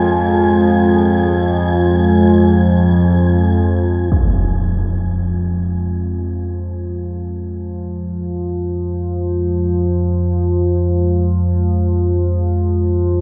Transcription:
0.00 4.11 F2 medium
0.00 4.10 F3 medium
0.00 4.11 G#3 medium
0.00 4.12 F4 medium
0.00 4.12 C5 medium
0.00 4.08 F5 medium
0.00 4.15 G#5 medium
4.11 13.21 F2 medium
4.11 13.21 F3 medium
4.11 13.21 G#3 medium
4.11 impact medium
5.61 13.21 F4 medium
5.65 13.21 C5 medium
8.29 13.21 F5 medium

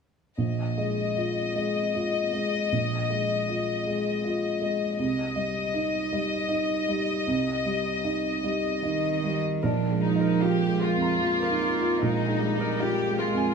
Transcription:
0.38 2.66 A#1 soft
0.38 4.95 D#5 soft
0.77 1.12 G#3 soft
0.77 1.12 D#5 soft
1.16 1.51 F4 soft
1.16 1.51 D#5 soft
1.55 1.90 G#3 soft
1.55 1.90 D#5 soft
1.94 2.29 F4 soft
1.94 2.29 D#5 soft
2.33 2.67 G#3 soft
2.33 2.68 D#5 soft
2.72 4.95 A#1 soft
3.10 3.44 G#3 soft
3.10 3.44 D#5 soft
3.48 3.82 F4 soft
3.48 3.82 D#5 soft
3.87 4.20 G#3 soft
3.87 4.20 D#5 soft
4.25 4.58 F4 soft
4.25 4.58 D#5 soft
4.62 4.95 G#3 soft
4.62 4.95 D#5 soft
4.99 7.21 C2 soft
4.99 9.38 D#5 soft
5.36 5.70 G3 soft
5.36 5.70 D#5 soft
5.74 6.07 D#4 soft
5.74 6.08 D#5 soft
6.12 6.45 G3 soft
6.12 6.45 D#5 soft
6.49 6.83 D#4 soft
6.49 6.83 D#5 soft
6.88 7.22 G3 soft
6.88 7.22 D#5 soft
7.27 9.59 C2 soft
7.65 8.00 G3 soft
7.65 8.00 D#5 soft
8.04 8.39 D#4 soft
8.04 8.39 D#5 soft
8.44 8.79 G3 soft
8.44 8.79 D#5 soft
8.82 9.64 D#3 medium
8.82 9.19 D#4 soft
8.82 9.19 D#5 soft
9.24 9.59 G3 soft
9.24 9.59 D#5 soft
9.62 11.98 A#1 soft
9.62 11.22 F3 medium
9.62 9.99 D4 soft
9.62 10.19 A#4 soft
9.91 10.31 G#3 soft
10.02 10.41 D#4 soft
10.16 10.57 D#5 soft
10.20 10.80 A#4 soft
10.40 10.84 F4 soft
10.40 10.81 G4 soft
10.40 11.61 F5 soft
10.68 11.12 G#3 soft
10.81 12.02 F4 soft
10.81 11.41 A#4 medium
10.95 11.39 F2 soft
11.02 13.54 A#5 soft
11.23 12.03 A#3 medium
11.23 11.65 F4 soft
11.42 12.00 A#4 medium
11.50 11.76 D#4 soft
11.62 11.81 F5 soft
11.76 12.17 F4 soft
11.82 12.78 F5 soft
12.02 13.54 A#1 soft
12.02 12.41 G#3 medium
12.02 12.78 D#4 soft
12.02 12.59 A#4 medium
12.28 12.69 G#3 soft
12.40 13.19 G3 medium
12.55 12.96 D#5 soft
12.60 13.17 A#4 medium
12.80 13.21 F4 soft
12.80 13.19 G4 medium
12.80 13.54 F5 soft
13.07 13.47 G#3 soft
13.18 13.54 G#3 medium
13.18 13.54 F4 soft
13.18 13.54 A#4 medium
13.33 13.54 F2 soft
13.37 13.54 G#5 soft

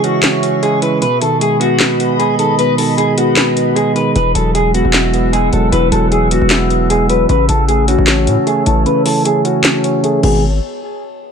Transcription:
0.00 0.42 C#3 medium
0.00 0.82 E3 medium
0.00 0.63 G#3 medium
0.00 0.04 C#4 loud
0.00 0.42 C#4 loud
0.00 0.59 F#4 medium
0.00 7.25 G#4 medium
0.00 0.24 C#5 medium
0.00 0.99 E5 medium
0.00 0.99 C#6 medium
0.00 closed hi-hat medium
0.23 1.02 C#5 medium
0.23 snare loud
0.23 clap medium
0.23 closed hi-hat medium
0.43 1.02 C#4 medium
0.43 closed hi-hat medium
0.63 1.02 G#3 loud
0.63 0.78 G#4 medium
0.63 closed hi-hat medium
0.82 1.02 E3 medium
0.82 0.97 B4 medium
0.82 closed hi-hat medium
1.02 2.00 B2 medium
1.02 1.17 B4 loud
1.02 4.12 D#5 medium
1.02 4.12 B5 medium
1.02 closed hi-hat medium
1.21 2.20 D#3 medium
1.21 1.37 A4 medium
1.21 closed hi-hat medium
1.40 2.19 G#3 medium
1.40 1.56 G#4 medium
1.40 closed hi-hat medium
1.60 1.99 B3 loud
1.60 2.16 F#4 medium
1.60 closed hi-hat medium
1.80 2.79 B4 medium
1.80 snare loud
1.80 clap medium
1.80 closed hi-hat medium
2.00 2.98 B3 medium
2.00 closed hi-hat medium
2.19 2.97 G#3 loud
2.19 2.34 G#4 medium
2.19 closed hi-hat medium
2.39 2.77 D#3 medium
2.39 2.54 A4 medium
2.39 closed hi-hat medium
2.59 3.57 B2 medium
2.59 2.74 B4 loud
2.59 closed hi-hat medium
2.78 3.76 D#3 medium
2.78 2.93 A4 medium
2.78 open hi-hat medium
2.97 3.74 G#3 medium
2.97 3.13 G#4 medium
2.97 closed hi-hat medium
3.18 3.55 B3 medium
3.18 3.73 F#4 medium
3.18 closed hi-hat medium
3.36 4.16 B4 medium
3.36 snare loud
3.36 clap medium
3.36 closed hi-hat medium
3.57 4.15 B3 medium
3.57 closed hi-hat medium
3.76 4.15 G#3 medium
3.76 3.91 G#4 medium
3.76 closed hi-hat medium
3.96 4.16 D#3 medium
3.96 4.11 B4 medium
3.96 closed hi-hat medium
4.16 4.34 E1 loud
4.16 5.14 E3 medium
4.16 4.31 B4 medium
4.16 7.26 F#5 medium
4.16 10.19 E6 medium
4.16 closed hi-hat medium
4.35 4.83 E1 loud
4.35 5.33 F#3 medium
4.35 4.50 A4 medium
4.35 closed hi-hat medium
4.55 5.32 G#3 medium
4.55 4.70 G#4 medium
4.55 closed hi-hat medium
4.74 5.13 B3 medium
4.74 5.30 F#4 medium
4.74 closed hi-hat medium
4.85 5.50 E1 loud
4.93 5.92 E4 medium
4.93 snare loud
4.93 clap medium
4.93 closed hi-hat medium
5.14 6.12 B3 medium
5.14 closed hi-hat medium
5.33 6.10 G#3 loud
5.33 5.48 G#4 medium
5.33 closed hi-hat medium
5.53 5.72 E1 loud
5.53 5.91 F#3 medium
5.53 5.68 A4 medium
5.53 closed hi-hat medium
5.72 5.91 E1 loud
5.72 6.70 E3 medium
5.72 5.87 B4 loud
5.72 closed hi-hat medium
5.92 6.40 E1 loud
5.92 6.90 F#3 medium
5.92 6.07 A4 medium
5.92 closed hi-hat medium
6.11 6.90 G#3 medium
6.11 6.27 G#4 medium
6.11 closed hi-hat medium
6.31 6.69 B3 medium
6.31 6.87 F#4 medium
6.31 closed hi-hat medium
6.42 7.26 E1 loud
6.50 7.29 E4 medium
6.50 snare loud
6.50 clap medium
6.50 closed hi-hat medium
6.70 7.29 B3 medium
6.70 closed hi-hat medium
6.90 7.30 G#3 medium
6.90 7.05 G#4 medium
6.90 closed hi-hat medium
7.09 7.29 F#3 medium
7.09 7.25 B4 medium
7.09 closed hi-hat medium
7.29 7.48 A1 loud
7.29 8.28 C#3 medium
7.29 7.44 B4 loud
7.29 10.20 C#5 medium
7.29 10.20 A5 medium
7.29 closed hi-hat medium
7.49 7.97 A1 loud
7.49 8.47 E3 medium
7.49 7.64 A4 medium
7.49 closed hi-hat medium
7.68 8.46 A3 medium
7.68 7.83 G#4 medium
7.68 closed hi-hat medium
7.88 8.26 C#4 loud
7.88 8.43 F#4 medium
7.88 closed hi-hat medium
7.98 8.29 A1 loud
8.07 9.06 C#5 medium
8.07 snare loud
8.07 clap medium
8.07 closed hi-hat medium
8.27 8.37 A2 loud
8.27 9.25 C#4 medium
8.27 closed hi-hat medium
8.47 9.24 A3 loud
8.47 8.62 G#4 medium
8.47 closed hi-hat medium
8.66 8.85 A1 loud
8.66 9.05 E3 medium
8.66 8.82 A4 medium
8.66 closed hi-hat medium
8.86 9.84 C#3 medium
8.86 9.01 B4 loud
8.86 closed hi-hat medium
9.06 10.04 E3 medium
9.06 9.21 A4 medium
9.06 open hi-hat medium
9.25 10.02 A3 medium
9.25 9.40 G#4 medium
9.25 closed hi-hat medium
9.45 9.83 C#4 loud
9.45 10.00 F#4 medium
9.45 closed hi-hat medium
9.64 10.23 C#5 medium
9.64 snare loud
9.64 clap medium
9.64 closed hi-hat medium
9.84 10.23 C#4 medium
9.84 closed hi-hat medium
10.03 10.23 A3 loud
10.03 10.19 G#4 medium
10.03 closed hi-hat medium
10.23 10.60 G#1 loud
10.23 10.42 B2 medium
10.23 10.42 D#3 medium
10.23 10.42 G#3 medium
10.23 10.42 B3 medium
10.23 10.42 G#4 medium
10.23 crash medium

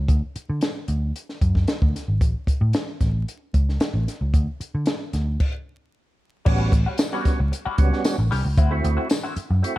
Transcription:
0.08 0.20 D2 medium
0.08 kick loud
0.08 closed hi-hat medium
0.36 muted picked electric bass stroke soft
0.36 closed hi-hat medium
0.50 0.60 D3 medium
0.61 snare loud
0.61 closed hi-hat medium
0.88 1.11 D2 medium
0.88 closed hi-hat medium
1.16 closed hi-hat medium
1.29 snare soft
1.41 1.64 F#2 medium
1.41 kick medium
1.41 closed hi-hat medium
1.55 kick medium
1.55 snare soft
1.68 snare medium
1.68 closed hi-hat medium
1.82 1.93 D2 medium
1.82 kick medium
1.96 snare soft
1.96 closed hi-hat medium
2.08 2.21 G#1 medium
2.21 2.33 A1 medium
2.21 kick loud
2.21 closed hi-hat medium
2.47 muted picked electric bass stroke soft
2.47 kick medium
2.47 closed hi-hat medium
2.61 2.72 A2 loud
2.73 snare loud
2.73 closed hi-hat medium
3.01 3.24 A1 medium
3.01 kick medium
3.01 snare soft
3.01 closed hi-hat medium
3.28 closed hi-hat medium
3.54 3.77 C#2 loud
3.54 kick medium
3.54 closed hi-hat medium
3.69 snare soft
3.80 muted picked electric bass stroke soft
3.80 snare loud
3.80 closed hi-hat medium
3.94 4.05 A1 medium
4.08 snare soft
4.08 closed hi-hat medium
4.21 4.32 C#2 medium
4.34 4.46 D2 loud
4.34 kick loud
4.34 closed hi-hat medium
4.60 muted picked electric bass stroke soft
4.60 closed hi-hat medium
4.75 4.85 D3 medium
4.86 snare loud
4.86 closed hi-hat medium
5.13 5.36 D2 medium
5.13 snare soft
5.13 closed hi-hat medium
5.40 kick medium
5.40 crash medium
6.45 6.69 A1 loud
6.45 6.62 G3 medium
6.45 6.73 G3 loud
6.45 6.73 B3 medium
6.45 6.62 C#4 loud
6.45 6.73 C#4 medium
6.45 6.62 F#4 loud
6.45 6.74 F#4 loud
6.45 kick loud
6.45 crash loud
6.72 6.84 A1 medium
6.72 muted clean electric guitar stroke soft
6.72 kick loud
6.72 closed hi-hat medium
6.86 6.98 G3 medium
6.86 6.98 C#4 medium
6.86 6.98 F#4 medium
6.98 muted clean electric guitar stroke soft
6.98 snare loud
6.98 closed hi-hat loud
6.98 tambourine loud
7.12 7.39 G3 medium
7.12 7.24 G3 medium
7.12 7.40 B3 medium
7.12 7.40 C#4 medium
7.12 7.25 C#4 medium
7.12 7.25 F#4 medium
7.12 7.40 F#4 medium
7.25 muted picked electric bass stroke soft
7.25 muted clean electric guitar stroke soft
7.25 kick medium
7.25 snare soft
7.25 closed hi-hat medium
7.40 7.50 C#2 medium
7.40 muted clean electric guitar stroke soft
7.52 muted clean electric guitar stroke soft
7.52 closed hi-hat medium
7.65 7.77 G3 medium
7.65 7.78 C#4 medium
7.65 7.78 F#4 medium
7.65 muted picked electric bass stroke soft
7.78 7.90 C#2 loud
7.78 8.16 G3 loud
7.78 8.16 B3 medium
7.78 8.17 C#4 loud
7.78 8.17 F#4 loud
7.78 muted clean electric guitar stroke soft
7.78 kick loud
7.78 closed hi-hat medium
7.93 muted clean electric guitar stroke medium
7.93 snare soft
8.05 snare loud
8.05 closed hi-hat loud
8.05 tambourine medium
8.18 8.29 A1 medium
8.18 muted clean electric guitar stroke soft
8.31 8.44 C2 medium
8.31 8.47 G3 medium
8.31 8.44 C#4 loud
8.31 8.45 G4 loud
8.31 snare soft
8.31 open hi-hat medium
8.45 8.56 C#2 medium
8.45 muted clean electric guitar stroke soft
8.57 8.80 D2 loud
8.57 8.74 C4 loud
8.57 8.74 E4 loud
8.57 8.74 F#4 loud
8.57 kick loud
8.57 closed hi-hat loud
8.71 9.08 A3 medium
8.71 9.08 C4 medium
8.71 9.08 E4 medium
8.71 9.09 F#4 loud
8.84 8.96 D2 loud
8.84 muted clean electric guitar stroke soft
8.84 closed hi-hat medium
8.97 9.09 C4 medium
8.97 9.09 E4 medium
8.97 9.08 F#4 medium
9.10 muted clean electric guitar stroke soft
9.10 snare loud
9.10 closed hi-hat loud
9.10 tambourine medium
9.23 9.35 C4 medium
9.23 9.35 E4 medium
9.23 9.35 F#4 medium
9.36 muted clean electric guitar stroke soft
9.36 muted picked electric bass stroke soft
9.36 closed hi-hat medium
9.50 9.61 F#2 medium
9.50 muted clean electric guitar stroke soft
9.62 9.78 A3 medium
9.62 9.78 C4 medium
9.62 9.78 E4 medium
9.62 9.78 F#4 medium
9.62 muted clean electric guitar stroke soft
9.62 closed hi-hat medium

